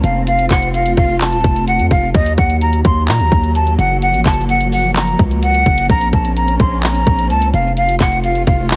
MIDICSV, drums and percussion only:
0, 0, Header, 1, 2, 480
1, 0, Start_track
1, 0, Key_signature, -5, "minor"
1, 0, Tempo, 468750
1, 276, Time_signature, 4, 2, 24, 8
1, 8971, End_track
2, 0, Start_track
2, 0, Title_t, "Drums"
2, 38, Note_on_c, 9, 42, 84
2, 140, Note_off_c, 9, 42, 0
2, 277, Note_on_c, 9, 42, 86
2, 379, Note_off_c, 9, 42, 0
2, 397, Note_on_c, 9, 42, 58
2, 500, Note_off_c, 9, 42, 0
2, 516, Note_on_c, 9, 42, 71
2, 517, Note_on_c, 9, 36, 93
2, 518, Note_on_c, 9, 39, 99
2, 619, Note_off_c, 9, 36, 0
2, 619, Note_off_c, 9, 42, 0
2, 621, Note_off_c, 9, 39, 0
2, 638, Note_on_c, 9, 42, 53
2, 741, Note_off_c, 9, 42, 0
2, 760, Note_on_c, 9, 42, 82
2, 862, Note_off_c, 9, 42, 0
2, 877, Note_on_c, 9, 42, 62
2, 979, Note_off_c, 9, 42, 0
2, 995, Note_on_c, 9, 42, 79
2, 997, Note_on_c, 9, 36, 98
2, 1098, Note_off_c, 9, 42, 0
2, 1099, Note_off_c, 9, 36, 0
2, 1236, Note_on_c, 9, 42, 78
2, 1238, Note_on_c, 9, 39, 102
2, 1339, Note_off_c, 9, 42, 0
2, 1340, Note_off_c, 9, 39, 0
2, 1356, Note_on_c, 9, 42, 55
2, 1458, Note_off_c, 9, 42, 0
2, 1477, Note_on_c, 9, 36, 97
2, 1477, Note_on_c, 9, 42, 76
2, 1579, Note_off_c, 9, 36, 0
2, 1580, Note_off_c, 9, 42, 0
2, 1599, Note_on_c, 9, 42, 53
2, 1701, Note_off_c, 9, 42, 0
2, 1716, Note_on_c, 9, 42, 77
2, 1818, Note_off_c, 9, 42, 0
2, 1837, Note_on_c, 9, 42, 57
2, 1939, Note_off_c, 9, 42, 0
2, 1956, Note_on_c, 9, 36, 96
2, 1957, Note_on_c, 9, 42, 85
2, 2058, Note_off_c, 9, 36, 0
2, 2059, Note_off_c, 9, 42, 0
2, 2196, Note_on_c, 9, 42, 84
2, 2197, Note_on_c, 9, 36, 109
2, 2298, Note_off_c, 9, 42, 0
2, 2299, Note_off_c, 9, 36, 0
2, 2316, Note_on_c, 9, 42, 58
2, 2419, Note_off_c, 9, 42, 0
2, 2435, Note_on_c, 9, 42, 67
2, 2436, Note_on_c, 9, 36, 98
2, 2537, Note_off_c, 9, 42, 0
2, 2539, Note_off_c, 9, 36, 0
2, 2556, Note_on_c, 9, 42, 52
2, 2659, Note_off_c, 9, 42, 0
2, 2677, Note_on_c, 9, 42, 81
2, 2779, Note_off_c, 9, 42, 0
2, 2795, Note_on_c, 9, 42, 60
2, 2897, Note_off_c, 9, 42, 0
2, 2915, Note_on_c, 9, 42, 79
2, 2916, Note_on_c, 9, 36, 98
2, 3018, Note_off_c, 9, 42, 0
2, 3019, Note_off_c, 9, 36, 0
2, 3156, Note_on_c, 9, 42, 75
2, 3157, Note_on_c, 9, 39, 107
2, 3258, Note_off_c, 9, 42, 0
2, 3259, Note_off_c, 9, 39, 0
2, 3275, Note_on_c, 9, 42, 58
2, 3377, Note_off_c, 9, 42, 0
2, 3397, Note_on_c, 9, 36, 99
2, 3397, Note_on_c, 9, 42, 74
2, 3500, Note_off_c, 9, 36, 0
2, 3500, Note_off_c, 9, 42, 0
2, 3519, Note_on_c, 9, 42, 51
2, 3622, Note_off_c, 9, 42, 0
2, 3636, Note_on_c, 9, 42, 80
2, 3739, Note_off_c, 9, 42, 0
2, 3757, Note_on_c, 9, 42, 58
2, 3860, Note_off_c, 9, 42, 0
2, 3878, Note_on_c, 9, 42, 88
2, 3981, Note_off_c, 9, 42, 0
2, 4118, Note_on_c, 9, 42, 82
2, 4221, Note_off_c, 9, 42, 0
2, 4238, Note_on_c, 9, 42, 59
2, 4341, Note_off_c, 9, 42, 0
2, 4357, Note_on_c, 9, 36, 92
2, 4358, Note_on_c, 9, 42, 59
2, 4359, Note_on_c, 9, 39, 98
2, 4438, Note_off_c, 9, 42, 0
2, 4438, Note_on_c, 9, 42, 60
2, 4460, Note_off_c, 9, 36, 0
2, 4461, Note_off_c, 9, 39, 0
2, 4517, Note_off_c, 9, 42, 0
2, 4517, Note_on_c, 9, 42, 56
2, 4598, Note_off_c, 9, 42, 0
2, 4598, Note_on_c, 9, 42, 82
2, 4701, Note_off_c, 9, 42, 0
2, 4716, Note_on_c, 9, 42, 61
2, 4819, Note_off_c, 9, 42, 0
2, 4836, Note_on_c, 9, 46, 77
2, 4938, Note_off_c, 9, 46, 0
2, 5077, Note_on_c, 9, 42, 77
2, 5078, Note_on_c, 9, 39, 105
2, 5179, Note_off_c, 9, 42, 0
2, 5180, Note_off_c, 9, 39, 0
2, 5196, Note_on_c, 9, 42, 57
2, 5298, Note_off_c, 9, 42, 0
2, 5317, Note_on_c, 9, 36, 99
2, 5318, Note_on_c, 9, 42, 74
2, 5420, Note_off_c, 9, 36, 0
2, 5420, Note_off_c, 9, 42, 0
2, 5439, Note_on_c, 9, 42, 53
2, 5542, Note_off_c, 9, 42, 0
2, 5557, Note_on_c, 9, 42, 82
2, 5659, Note_off_c, 9, 42, 0
2, 5677, Note_on_c, 9, 42, 59
2, 5779, Note_off_c, 9, 42, 0
2, 5796, Note_on_c, 9, 36, 100
2, 5797, Note_on_c, 9, 42, 54
2, 5899, Note_off_c, 9, 36, 0
2, 5900, Note_off_c, 9, 42, 0
2, 5917, Note_on_c, 9, 42, 91
2, 6019, Note_off_c, 9, 42, 0
2, 6037, Note_on_c, 9, 36, 108
2, 6037, Note_on_c, 9, 42, 86
2, 6139, Note_off_c, 9, 36, 0
2, 6139, Note_off_c, 9, 42, 0
2, 6157, Note_on_c, 9, 42, 57
2, 6259, Note_off_c, 9, 42, 0
2, 6276, Note_on_c, 9, 42, 71
2, 6277, Note_on_c, 9, 36, 95
2, 6378, Note_off_c, 9, 42, 0
2, 6379, Note_off_c, 9, 36, 0
2, 6397, Note_on_c, 9, 42, 51
2, 6499, Note_off_c, 9, 42, 0
2, 6519, Note_on_c, 9, 42, 78
2, 6621, Note_off_c, 9, 42, 0
2, 6636, Note_on_c, 9, 42, 61
2, 6739, Note_off_c, 9, 42, 0
2, 6755, Note_on_c, 9, 42, 79
2, 6757, Note_on_c, 9, 36, 99
2, 6858, Note_off_c, 9, 42, 0
2, 6859, Note_off_c, 9, 36, 0
2, 6995, Note_on_c, 9, 42, 78
2, 6996, Note_on_c, 9, 39, 104
2, 7098, Note_off_c, 9, 42, 0
2, 7099, Note_off_c, 9, 39, 0
2, 7115, Note_on_c, 9, 42, 58
2, 7217, Note_off_c, 9, 42, 0
2, 7237, Note_on_c, 9, 36, 94
2, 7237, Note_on_c, 9, 42, 74
2, 7339, Note_off_c, 9, 36, 0
2, 7340, Note_off_c, 9, 42, 0
2, 7359, Note_on_c, 9, 42, 50
2, 7461, Note_off_c, 9, 42, 0
2, 7476, Note_on_c, 9, 42, 80
2, 7579, Note_off_c, 9, 42, 0
2, 7596, Note_on_c, 9, 42, 55
2, 7699, Note_off_c, 9, 42, 0
2, 7717, Note_on_c, 9, 42, 84
2, 7820, Note_off_c, 9, 42, 0
2, 7956, Note_on_c, 9, 42, 80
2, 8058, Note_off_c, 9, 42, 0
2, 8076, Note_on_c, 9, 42, 58
2, 8179, Note_off_c, 9, 42, 0
2, 8194, Note_on_c, 9, 42, 68
2, 8196, Note_on_c, 9, 36, 94
2, 8196, Note_on_c, 9, 39, 97
2, 8296, Note_off_c, 9, 42, 0
2, 8298, Note_off_c, 9, 36, 0
2, 8298, Note_off_c, 9, 39, 0
2, 8315, Note_on_c, 9, 42, 53
2, 8417, Note_off_c, 9, 42, 0
2, 8435, Note_on_c, 9, 42, 82
2, 8538, Note_off_c, 9, 42, 0
2, 8553, Note_on_c, 9, 42, 61
2, 8656, Note_off_c, 9, 42, 0
2, 8673, Note_on_c, 9, 42, 80
2, 8675, Note_on_c, 9, 36, 98
2, 8775, Note_off_c, 9, 42, 0
2, 8778, Note_off_c, 9, 36, 0
2, 8914, Note_on_c, 9, 42, 78
2, 8915, Note_on_c, 9, 39, 105
2, 8971, Note_off_c, 9, 39, 0
2, 8971, Note_off_c, 9, 42, 0
2, 8971, End_track
0, 0, End_of_file